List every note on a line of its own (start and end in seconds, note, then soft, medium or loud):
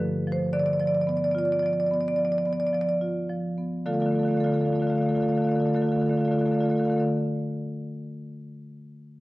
0.00 0.49 G2 medium
0.00 0.42 D3 medium
0.00 0.16 F3 soft
0.00 0.31 B4 medium
0.27 0.53 F3 soft
0.32 0.52 C5 medium
0.53 2.13 D3 medium
0.53 0.60 D5 medium
0.60 0.66 D5 medium
0.66 0.73 D5 medium
0.73 0.80 D5 medium
0.80 1.24 F3 soft
0.80 0.87 D5 medium
0.87 0.95 D5 medium
0.95 1.01 D5 medium
1.01 1.09 D5 medium
1.07 1.51 B3 soft
1.07 1.17 D5 medium
1.17 1.24 D5 medium
1.24 1.31 D5 medium
1.31 1.78 F4 medium
1.31 1.38 D5 medium
1.38 1.45 D5 medium
1.45 1.52 D5 medium
1.52 1.59 D5 medium
1.59 2.06 F3 soft
1.59 1.66 D5 medium
1.66 1.73 D5 medium
1.73 1.80 D5 medium
1.80 1.86 D5 medium
1.86 1.93 D5 medium
1.91 2.34 B3 medium
1.91 2.00 D5 medium
2.00 2.08 D5 medium
2.08 2.16 D5 medium
2.16 2.62 F3 soft
2.16 2.25 D5 medium
2.25 2.32 D5 medium
2.32 2.38 D5 medium
2.38 2.46 D5 medium
2.46 2.90 B3 soft
2.46 2.53 D5 medium
2.53 2.60 D5 medium
2.60 2.67 D5 medium
2.67 2.74 D5 medium
2.73 3.18 F3 soft
2.73 2.81 D5 medium
2.81 2.89 D5 medium
2.89 2.97 D5 medium
3.01 3.47 F4 soft
3.30 3.75 F3 soft
3.58 3.86 B3 soft
3.86 3.96 D3 medium
3.86 3.94 A3 soft
3.86 3.94 F4 soft
3.86 3.93 A4 soft
3.86 3.94 D5 soft
3.86 3.93 F5 soft
3.93 4.06 D3 soft
3.93 4.02 A3 soft
3.93 4.02 F4 soft
3.93 4.00 A4 soft
3.93 4.01 D5 soft
3.93 4.01 F5 soft
4.00 4.11 A3 soft
4.00 4.09 F4 soft
4.00 4.06 A4 soft
4.00 4.08 D5 soft
4.00 4.07 F5 soft
4.06 4.15 D3 medium
4.06 4.16 F4 soft
4.06 4.12 A4 soft
4.06 4.15 D5 soft
4.06 4.15 F5 soft
4.11 4.25 D3 soft
4.11 4.20 A3 soft
4.11 4.19 A4 soft
4.15 4.23 F4 soft
4.15 4.22 D5 soft
4.15 4.22 F5 soft
4.19 4.28 A3 soft
4.19 4.26 A4 soft
4.19 4.29 D5 soft
4.19 4.29 F5 soft
4.23 4.34 D3 soft
4.23 4.31 F4 soft
4.23 4.33 A4 soft
4.28 4.37 A3 soft
4.28 4.38 F4 soft
4.28 4.37 D5 soft
4.28 4.36 F5 soft
4.33 4.44 D3 soft
4.33 4.40 A4 soft
4.33 4.44 D5 soft
4.33 4.44 F5 soft
4.37 4.46 A3 soft
4.37 4.44 F4 soft
4.37 4.47 A4 soft
4.44 4.53 D3 medium
4.44 4.56 A3 soft
4.44 4.50 F4 soft
4.44 4.54 A4 soft
4.44 4.52 D5 soft
4.44 4.51 F5 soft
4.50 4.62 D3 soft
4.50 4.58 F4 soft
4.50 4.61 A4 soft
4.50 4.60 D5 soft
4.50 4.59 F5 soft
4.56 4.64 A3 soft
4.56 4.65 F4 soft
4.56 4.66 F5 soft
4.60 4.72 D3 soft
4.60 4.68 A4 soft
4.60 4.67 D5 soft
4.64 4.73 A3 soft
4.64 4.72 F4 soft
4.64 4.76 D5 soft
4.64 4.74 F5 soft
4.68 4.82 D3 soft
4.68 4.75 A4 soft
4.72 4.81 A3 soft
4.72 4.80 F4 soft
4.72 4.83 A4 soft
4.72 4.83 D5 soft
4.72 4.82 F5 soft
4.80 4.92 D3 soft
4.80 4.90 A3 soft
4.80 4.87 F4 soft
4.80 4.88 A4 soft
4.80 4.90 D5 soft
4.80 4.89 F5 soft
4.87 4.98 A3 soft
4.87 4.95 F4 soft
4.87 4.95 A4 soft
4.87 4.98 D5 soft
4.87 4.96 F5 soft
4.92 5.00 D3 soft
4.92 5.01 F4 soft
4.92 5.02 A4 soft
4.96 5.06 A3 soft
4.96 5.05 D5 soft
4.96 5.02 F5 soft
5.00 5.10 D3 medium
5.00 5.08 F4 soft
5.00 5.09 A4 soft
5.00 5.09 F5 soft
5.05 5.14 A3 soft
5.05 5.15 F4 soft
5.05 5.16 A4 soft
5.05 5.13 D5 soft
5.05 5.16 F5 soft
5.10 5.20 D3 soft
5.10 5.21 D5 soft
5.14 5.23 A3 soft
5.14 5.22 F4 soft
5.14 5.22 A4 soft
5.14 5.22 F5 soft
5.20 5.29 D3 soft
5.20 5.32 A3 soft
5.20 5.30 F4 soft
5.20 5.28 A4 soft
5.20 5.29 D5 soft
5.20 5.29 F5 soft
5.28 5.37 D3 soft
5.28 5.40 A3 soft
5.28 5.38 F4 soft
5.28 5.35 A4 soft
5.28 5.37 D5 soft
5.28 5.36 F5 soft
5.35 5.47 D3 medium
5.35 5.45 F4 soft
5.35 5.42 A4 soft
5.35 5.44 D5 soft
5.35 5.43 F5 soft
5.40 5.49 A3 soft
5.40 5.49 A4 soft
5.40 5.51 D5 soft
5.40 5.51 F5 soft
5.45 5.55 D3 soft
5.45 5.57 A3 soft
5.45 5.52 F4 soft
5.49 5.60 F4 soft
5.49 5.55 A4 soft
5.49 5.59 D5 soft
5.49 5.58 F5 soft
5.55 5.64 D3 medium
5.55 5.65 A3 soft
5.55 5.61 A4 soft
5.55 5.65 F5 soft
5.59 5.67 F4 soft
5.59 5.68 A4 soft
5.59 5.66 D5 soft
5.64 5.75 D3 medium
5.64 5.74 A3 soft
5.64 5.75 F4 soft
5.64 5.76 A4 soft
5.64 5.74 D5 soft
5.64 5.72 F5 soft
5.72 5.83 D3 soft
5.72 5.84 A3 soft
5.72 5.82 F4 soft
5.72 5.84 A4 soft
5.72 5.81 D5 soft
5.72 5.79 F5 soft
5.79 5.92 D3 medium
5.79 5.89 F4 soft
5.79 5.87 D5 soft
5.79 5.86 F5 soft
5.84 5.92 A3 soft
5.84 5.92 A4 soft
5.84 5.94 D5 soft
5.84 5.92 F5 soft
5.89 6.01 D3 medium
5.89 6.01 A3 soft
5.89 5.95 F4 soft
5.89 6.00 A4 soft
5.89 5.99 F5 soft
5.94 6.02 F4 soft
5.94 6.02 D5 soft
5.99 6.11 D3 soft
5.99 6.10 A3 soft
5.99 6.09 F4 soft
5.99 6.06 A4 soft
5.99 6.08 D5 soft
5.99 6.07 F5 soft
6.06 6.18 A3 soft
6.06 6.17 F4 soft
6.06 6.13 A4 soft
6.06 6.16 D5 soft
6.06 6.14 F5 soft
6.11 6.21 D3 soft
6.11 6.19 A4 soft
6.11 6.21 F5 soft
6.16 6.28 A3 soft
6.16 6.25 F4 soft
6.16 6.25 A4 soft
6.16 6.25 D5 soft
6.21 6.31 D3 soft
6.21 6.28 F5 soft
6.25 6.38 A3 soft
6.25 6.31 F4 soft
6.25 6.32 A4 soft
6.25 6.33 D5 soft
6.25 6.34 F5 soft
6.31 6.41 D3 soft
6.31 6.39 F4 soft
6.31 6.39 A4 soft
6.31 6.40 D5 soft
6.31 6.41 F5 soft
6.38 6.51 D3 soft
6.38 6.45 A3 soft
6.38 6.46 F4 soft
6.38 6.46 A4 soft
6.38 6.47 D5 soft
6.38 6.48 F5 soft
6.45 6.54 A3 soft
6.45 6.53 F4 soft
6.45 6.52 A4 soft
6.45 6.54 D5 soft
6.45 6.56 F5 soft
6.51 6.60 D3 medium
6.51 6.63 A3 soft
6.51 6.61 F4 soft
6.51 6.59 A4 soft
6.51 6.62 D5 soft
6.56 6.65 A4 soft
6.56 6.63 F5 soft
6.60 6.70 D3 soft
6.60 6.71 A3 soft
6.60 6.69 F4 soft
6.60 6.70 D5 soft
6.60 6.70 F5 soft
6.65 6.75 F4 soft
6.65 6.71 A4 soft
6.70 6.80 D3 soft
6.70 6.79 A3 soft
6.70 6.78 A4 soft
6.70 6.77 D5 soft
6.70 6.78 F5 soft
6.75 6.88 A3 soft
6.75 6.83 F4 soft
6.75 6.84 A4 soft
6.75 6.85 D5 soft
6.75 6.85 F5 soft
6.80 6.90 D3 soft
6.80 6.90 F4 soft
6.84 6.96 A3 soft
6.84 6.92 A4 soft
6.84 6.92 D5 soft
6.84 6.92 F5 soft
6.90 7.00 D3 medium
6.90 6.98 F4 soft
6.90 6.98 A4 soft
6.90 7.00 D5 soft
6.90 7.00 F5 soft
6.96 7.05 D3 soft
6.96 7.05 A3 soft
6.96 7.05 F4 soft
6.96 7.05 A4 soft
6.96 7.05 D5 soft
6.96 7.05 F5 soft